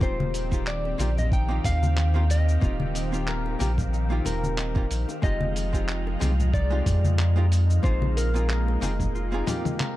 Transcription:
Already playing: D#4 F4 G#4
0.00 D#1 D#3 A#3 C4 D#4 F4 G4 C5 F5, kick, cabasa
0.20 high conga
0.34 open hi-hat, cabasa
0.51 A#3 C4 D#4 F4 G4, kick, cabasa
0.67 D5, clap, cabasa
0.85 high bongo
0.98 A#1 A#3 C4 D#4 F4 G4, open hi-hat, high conga, cabasa
1.17 D#5, low conga, cabasa
1.32 D#4 G5, kick, cabasa
1.49 A#3 C4 D#4 F4 G4
1.64 D#2 F5, kick, open hi-hat, low conga, cabasa
1.83 high conga, cabasa
1.97 clap, cabasa
2.14 A#3 C4 D#4 F4 G4, high bongo
2.30 D#5, open hi-hat, cabasa
2.49 cabasa
2.61 D#1 A#3 C4 D#4 F4 G4, kick, cabasa
2.80 high conga
2.95 D#5, open hi-hat, cabasa
3.12 A#3 C4 D#4 F4 G4, cabasa
3.27 A#4, clap, cabasa
3.46 high bongo
3.59 A#1 A#3 C4 D#4 F4 G4 A#4, open hi-hat, high conga, cabasa
3.78 kick, low conga, cabasa
3.93 D#4, cabasa
4.10 A#3 C4 D#4 F4 G4
4.25 D#1 A#4, open hi-hat, low conga, cabasa
4.44 high conga, cabasa
4.58 D#5, clap, cabasa
4.75 A#3 C4 D#4 F4 G4, kick
4.91 A#1, open hi-hat, cabasa
5.09 high bongo, cabasa
5.22 F1 F3 G#3 C4 D#4 F4 G4 D#5, kick, cabasa
5.41 high conga
5.56 open hi-hat, cabasa
5.73 G#3 C4 D#4 F4 G4, kick, cabasa
5.88 clap, cabasa
6.07 high bongo
6.20 C2 G#3 C4 D#4 F4 G4, open hi-hat, high conga, cabasa
6.40 low conga, cabasa
6.54 D#4 D5, kick, cabasa
6.70 G#3 C4 D#4 F4 G4
6.86 F2, kick, open hi-hat, low conga, cabasa
7.04 high conga, cabasa
7.19 clap, cabasa
7.36 G#3 C4 D#4 F4 G4, high bongo
7.52 open hi-hat, cabasa
7.70 cabasa
7.83 A#1 G#3 A#3 C4 D#4 F4 G#4 C5, kick, cabasa
8.02 high conga
8.17 A#4 F5, open hi-hat, cabasa
8.34 A#3 C4 D#4 F4 G#4, cabasa
8.50 A#4, clap, cabasa
8.68 high bongo
8.81 F1 A#3 C4 D#4 F4 G#4 A#4, open hi-hat, high conga, cabasa
9.00 kick, low conga, cabasa
9.15 F4, cabasa
9.32 A#3 C4 D#4 F4 G#4
9.46 A#3 C4 D#4 F4 G4 F5, open hi-hat, high tom, high bongo, low conga, cabasa
9.65 high tom, high conga, cabasa
9.80 A#4, clap, mid tom, high bongo, cabasa

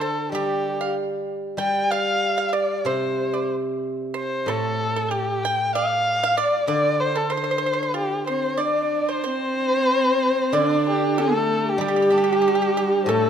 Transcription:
Already playing: D3
0.00 A4
0.32 G3 G4
0.81 F5
1.57 G3 G5
1.91 F5
2.38 F5
2.48 F5
2.53 D5
2.85 C3 C5
3.34 D5
4.14 C5
4.18 C5
4.46 A2 A4
4.96 A4
5.11 G4
5.43 G5
5.75 F5
6.23 F5
6.37 D5
6.67 D3 D5
7.00 C5
7.15 A4
7.30 C5
7.37 C5
7.44 C5
7.51 C5
7.58 C5
7.66 C5
7.73 C5
7.83 C5
7.94 F4 G4
8.22 G4
8.27 C4 C5
8.57 D4 D5
9.06 C5 D5
9.10 C5
9.24 C4 C5
9.29 C5
10.52 D3 D4 D5
10.89 G4
11.18 A3 A4
11.56 G4
11.66 G4
11.78 G3 G4
11.83 G4
11.88 G4
11.96 G4
12.02 G4
12.10 D4 G4
12.18 G4
12.24 G4
12.33 G4
12.42 G4
12.48 G4
12.55 G4
12.62 G4
12.77 G4
13.03 A2 C5
13.09 A3 A4

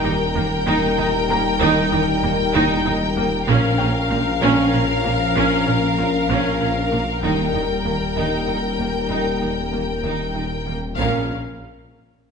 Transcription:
Already playing: D#1 G3 D#4 A#4 G5 D#6
0.04 D#2 D#3 G3 D#4
0.35 D#2 D#3 A#3
0.66 D#2 D#3 D#4
0.97 D#2 D#3 D#4
1.29 D#2 D#3 A#3 A#4 A#5
1.60 D#2 D#3 D#4
1.92 D#2 D#3 G3 D#4
2.23 D#2 D#3 A#3
2.54 D#2 D#3 D#4
2.85 D#2 D#3 D#4 A#5
3.16 D#2 D#3 A#3
3.48 A#1 A#2 F3 A#3 C#4 A#4 F5
3.78 A#1 A#2 C#4 G5
4.10 A#1 A#2 A#3 F4
4.41 A#1 A#2 A#3 C#4 C#5
4.73 A#1 A#2 C#4 A#4
5.04 A#1 A#2 A#3 F4
5.35 A#1 A#2 A#3 C#4
5.66 A#1 A#2 C#4
5.98 A#1 A#2 A#3 F4
6.28 A#1 A#2 A#3 C#4
6.60 A#1 A#2 C#4 A#4
6.91 A#1 A#2 A#3 F4
7.22 D#1 D#2 D#3 G3 A#3 D#4 A#4 G5
7.54 D#2 D#3 G3 D#4
7.85 D#2 D#3 A#3
8.16 D#2 D#3 D#4
8.47 D#2 D#3 D#4
8.79 D#2 D#3 A#3
9.09 D#2 D#3 D#4
9.41 D#2 D#3 G3 D#4
9.72 D#2 D#3 A#3 A#4
10.03 D#2 D#3 D#4
10.34 D#2 D#3 D#4
10.66 D#2 D#3 A#3
10.97 A#1 A#2 F3 C#4 A#4 F5

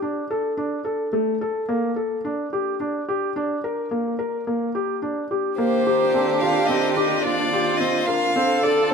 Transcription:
0.02 D4
0.30 A4
0.57 D4
0.85 A4
1.13 A3
1.41 A4
1.69 A#3
1.96 A4
2.25 D4
2.53 G4
2.80 D4
3.09 G4
3.36 D4
3.64 A#4
3.91 A#3
4.19 A#4
4.47 A#3
4.75 G4
5.02 D4
5.31 G4
5.58 D#3 A#3 C4 D4 F4 G4 C5
5.86 G4 A#4
6.05 D5
6.14 C4 A4
6.40 F4 F5
6.67 C4 D#5
6.94 G4 D#5
7.22 D4 F4 D5
7.53 G4
7.77 C4 D#5
8.06 A#4 F5
8.34 D3 C4 F4 A4
8.62 D4 A4 D5
8.82 F4
8.90 C5

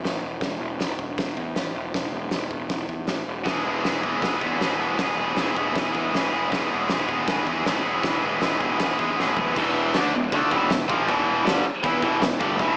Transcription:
0.04 A1, snare, open hi-hat
0.23 E1
0.41 E1, kick, snare, open hi-hat
0.60 E1
0.78 E1, snare, open hi-hat
0.99 E1, kick
1.18 E1, kick, snare, open hi-hat
1.37 E2, kick
1.55 A1, snare, open hi-hat
1.75 E1
1.94 E1, kick, snare, open hi-hat
2.13 E1
2.31 E1, snare, open hi-hat
2.51 E1, kick
2.69 E1, kick, snare, open hi-hat
2.88 E2, kick
3.07 A1, snare, open hi-hat
3.28 E1
3.44 E1 E2 B2 E3 G#3 B3, kick, snare, open hi-hat
3.49 G#4
3.64 E1 G#3 B3 G#4
3.68 E3
3.82 E1 E3 G#3, snare, open hi-hat
3.86 B3 G#4
4.01 E1 B2 E3 G#3 B3 G#4, kick
4.05 E2
4.19 E1 E3 G#3, kick
4.23 B3 G#4, snare, open hi-hat
4.39 E2 G#3 B3 G#4, kick
4.45 E3
4.57 E2 B2 E3 G#3, open hi-hat
4.61 A1 B3 G#4, snare
4.78 E1 G#3 B3 G#4
4.83 E3
4.97 E1 E2 B2 E3 G#3 G#4, kick, snare, open hi-hat
5.01 B3
5.16 E1 G#3 B3 G#4
5.21 E3
5.35 E1 E3 G#3 B3, snare, open hi-hat
5.40 G#4
5.55 E1 G#3 B3 G#4, kick
5.59 E2 B2 E3
5.74 E1 E3 G#3 B3, kick, snare, open hi-hat
5.79 G#4
5.93 E2 G#3 B3 G#4, kick
5.98 E3
6.12 A1 E2 B2 E3 G#3, snare, open hi-hat
6.17 B3 G#4
6.30 E1 G#3 B3 G#4
6.35 E3
6.49 E1 E2 B2 E3 G#3, kick, open hi-hat
6.53 B3 G#4, snare
6.69 E1 G#3 B3 G#4
6.74 E3
6.89 E1 E3 G#3, snare, open hi-hat
6.94 B3 G#4
7.07 E1 E3 G#3 B3 G#4, kick
7.12 E2 B2
7.27 E1 E3 G#3 B3, kick, snare, open hi-hat
7.32 G#4
7.46 E2 G#3 B3 G#4, kick
7.51 E3
7.64 A1 E2 B2 E3 G#3 B3, snare, open hi-hat
7.69 G#4
7.82 E1 G#3 B3 G#4
7.87 E3
8.03 E1 E2 B2 E3 G#3, kick, snare, open hi-hat
8.07 B3 G#4
8.21 E1 G#3 B3 G#4
8.26 E3
8.41 E1 E3 G#3 B3, snare, open hi-hat
8.46 G#4
8.59 E1 B2 E3 G#3 B3 G#4, kick
8.64 E2
8.79 E1 E3 G#3, kick, snare, open hi-hat
8.83 B3 G#4
8.98 E2 G#3 B3 G#4, kick
9.03 E3
9.16 A1 E2 B2 E3 G#3, snare
9.20 B3 G#4
9.36 E1 G#3 B3 G#4, floor tom
9.41 E3
9.56 E1 E2 B2 E3, kick, crash
9.94 D2 D3 A3 D4, snare, crash
10.14 E1 E2 B2
10.32 D2 D3 A3 D4, kick, crash
10.51 E1 E2 B2 E3, kick
10.70 E1 E2 B2, snare, crash
10.88 A#1 A#2 F3 A#3, kick
11.07 E1 E2 B2 E3, kick, crash
11.44 G1 G2 D3 G3, snare, crash
11.65 muted picked electric bass stroke, muted overdriven electric guitar stroke
11.83 E2 E3 B3 E4, kick, crash
12.02 E1 E2 B2 E3, kick
12.21 E1 E2 B2, snare, crash
12.39 G1 G2 D3 G3, kick
12.59 E1 E2 B2 E3, kick, crash

